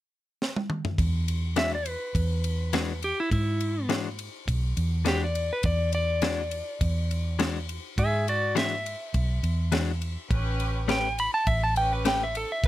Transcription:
0.42 snare
0.56 high tom
0.70 mid tom
0.85 floor tom
0.98 E2, kick, ride
1.28 ride
1.56 E3 G#3 D4 F#4 E5, snare, ride
1.75 D5
1.86 B4, ride
2.15 E2, kick, ride
2.44 ride
2.73 E3 G#3 D4 F#4, snare, ride
3.02 G4, ride
3.20 E4
3.31 G#2, kick, ride
3.61 ride
3.89 E3 G#3 D4 F#4, snare, ride
4.19 ride
4.47 B1, kick, ride
4.77 E2, ride
5.05 E3 G#3 D4 F#4 G4, snare, ride
5.24 D5
5.35 ride
5.53 B4
5.63 E2 D5, kick, ride
5.93 D5, ride
6.22 E3 G#3 D4 F#4, snare, ride
6.51 ride
6.81 E2, kick, ride
7.11 ride
7.39 E3 G#3 D4 F#4, snare, ride
7.69 ride
7.98 G#2 G#4 E5, kick, ride
8.28 F#4 D5, ride
8.55 E3 G#3 D4 F#4 E5, snare, ride
8.86 ride
9.14 B1, kick, ride
9.43 E2, ride
9.72 E3 G#3 D4 F#4, snare, ride
10.02 ride
10.30 A1 C#4 G4 B4, kick, ride
10.60 ride
10.88 A3 C#4 G4 B4 G5, snare, ride
11.19 B5, ride
11.34 A5
11.47 A1 E5, kick, ride
11.64 A5
11.75 C#4 G4 B4 G5, ride
11.93 B4
12.05 A3 C#4 G4 B4 G5, snare, ride
12.23 E5
12.35 A4, ride
12.52 E5
12.64 C#2 C#4 G4 B4, kick, ride

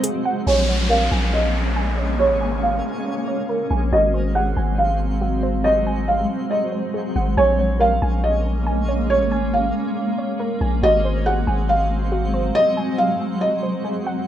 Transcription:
Already playing: F#3 G#3 C4 F#4 C5 G#5
0.03 G#4, closed hi-hat
0.25 F#5
0.46 A#1 G#3 A#3 C#4 G#4 C#5 G#5, downlifter
0.69 C#5
0.89 A#4 F5
1.11 A#1 G#5
1.33 D#5
1.76 G#5
1.98 C#5
2.19 C#5
2.30 G#1
2.41 G#5
2.63 F5
3.28 C#5
3.49 A#4
3.70 A#1 G#5
3.92 G#1 F#3 G#3 C4 F#4 C5 D#5
4.14 C5
4.35 G#4 F#5
4.57 G#1 G#5
4.78 F5
5.21 F#4
5.43 C5
5.64 D#5
5.87 G#5
6.08 F5
6.50 D#5
6.72 C5
6.94 G#4
7.16 G#1 F#5
7.37 A#1 G#3 A#3 C#4 G#4 C#5 G#5
7.59 C#5
7.80 A#4 F5
8.02 A#1 G#5
8.24 D#5
8.67 G#5
8.89 C#5
9.10 C#5
9.21 G#1
9.32 G#5
9.54 F5
10.18 C#5
10.40 A#4
10.61 A#1 G#5
10.83 G#1 F#3 G#3 C4 F#4 C5 D#5
11.05 C5
11.26 G#4 F#5
11.47 G#1 G#5
11.69 F5
12.12 F#4
12.34 C5
12.55 D#5
12.77 G#5
12.98 F5
13.41 D#5
13.63 C5
13.85 G#4
14.07 F#5

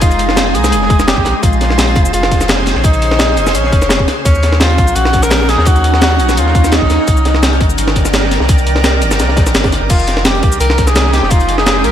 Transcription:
Already playing: F1 G#3 D#4 G#4
0.01 F4, kick, closed hi-hat, shaker
0.11 closed hi-hat, shaker
0.19 closed hi-hat
0.29 snare
0.36 snare, closed hi-hat, shaker
0.55 C2 G#4, closed hi-hat, shaker
0.64 snare, shaker
0.72 F1, closed hi-hat, shaker
0.82 snare
0.90 kick, closed hi-hat, shaker
1.00 snare, shaker
1.07 G4, snare, closed hi-hat, shaker
1.17 C2, kick
1.25 A#1 C#3 G#4 C5, snare, closed hi-hat, shaker
1.36 G4
1.43 A#1 F4, kick, closed hi-hat, shaker
1.53 shaker
1.61 snare, closed hi-hat
1.70 snare
1.78 snare, closed hi-hat, shaker
1.88 closed hi-hat
1.95 F1, kick, closed hi-hat
2.05 shaker
2.13 F1 F4, closed hi-hat, shaker
2.23 snare
2.31 kick, snare, closed hi-hat, shaker
2.41 snare, shaker
2.48 snare, closed hi-hat, shaker
2.58 snare
2.66 snare, closed hi-hat, shaker
2.75 A#1, snare
2.84 D#4, kick, closed hi-hat, shaker
2.93 closed hi-hat, shaker
3.02 closed hi-hat
3.11 snare
3.19 snare, closed hi-hat, shaker
3.37 F1, closed hi-hat, shaker
3.47 snare, shaker
3.55 A#1 C#4, closed hi-hat, shaker
3.64 snare
3.72 F1, kick, closed hi-hat, shaker
3.82 snare, shaker
3.89 snare, closed hi-hat, shaker
3.99 kick
4.07 F#3 C#4 D#4, snare, closed hi-hat, shaker
4.25 D#2 C#4, kick, closed hi-hat, shaker
4.35 shaker
4.43 snare, closed hi-hat
4.53 snare
4.60 F4, snare, closed hi-hat, shaker
4.70 closed hi-hat
4.78 A#1, kick, closed hi-hat
4.88 shaker
4.95 A#1 F#4, closed hi-hat, shaker
5.05 snare
5.12 kick, snare, closed hi-hat, shaker
5.23 A#4, snare, shaker
5.30 snare, closed hi-hat, shaker
5.41 snare
5.49 G#4, snare, closed hi-hat, shaker
5.58 D#2, snare
5.65 F#4, kick, closed hi-hat, shaker
5.76 closed hi-hat, shaker
5.84 closed hi-hat
5.94 snare
6.02 F#4, snare, closed hi-hat, shaker
6.20 A#1, closed hi-hat, shaker
6.29 snare, shaker
6.37 D#2 F4, closed hi-hat, shaker
6.47 snare
6.55 kick, closed hi-hat, shaker
6.64 snare, shaker
6.72 D#4, snare, closed hi-hat, shaker
6.82 A#1, kick
6.90 D#2, snare, closed hi-hat, shaker
7.08 C2 D#3 A#4 D5, kick, closed hi-hat, shaker
7.17 shaker
7.25 snare, closed hi-hat
7.35 snare
7.43 snare, closed hi-hat, shaker
7.53 closed hi-hat
7.61 G1, kick, closed hi-hat
7.70 shaker
7.78 G1, closed hi-hat, shaker
7.88 snare
7.95 kick, snare, closed hi-hat, shaker
8.05 snare, shaker
8.14 snare, closed hi-hat, shaker
8.23 snare
8.31 snare, closed hi-hat, shaker
8.40 C2, snare
8.49 kick, closed hi-hat, shaker
8.58 closed hi-hat, shaker
8.67 closed hi-hat
8.75 snare
8.84 snare, closed hi-hat, shaker
9.02 G1, closed hi-hat, shaker
9.11 snare, shaker
9.19 C2, snare, closed hi-hat, shaker
9.29 snare
9.37 A#1, kick, snare, closed hi-hat, shaker
9.47 snare, shaker
9.54 G1, snare, closed hi-hat, shaker
9.64 kick, snare, closed hi-hat
9.72 snare, closed hi-hat, shaker
9.82 G1
9.90 F1 G#3 D#4 F4 G4, kick, closed hi-hat, crash, shaker
9.99 shaker
10.07 snare, closed hi-hat
10.17 snare
10.25 G4, snare, closed hi-hat, shaker
10.35 closed hi-hat
10.43 C2, kick, closed hi-hat
10.52 shaker
10.60 C2 A#4, closed hi-hat, shaker
10.70 snare
10.78 kick, snare, closed hi-hat, shaker
10.87 G#4, snare, shaker
10.96 snare, closed hi-hat, shaker
11.05 snare
11.13 G4, snare, closed hi-hat, shaker
11.23 F1, snare
11.30 F4, kick, closed hi-hat, shaker
11.40 closed hi-hat, shaker
11.48 closed hi-hat
11.58 G#4, snare
11.66 snare, closed hi-hat, shaker
11.84 C2 A#4, closed hi-hat, shaker

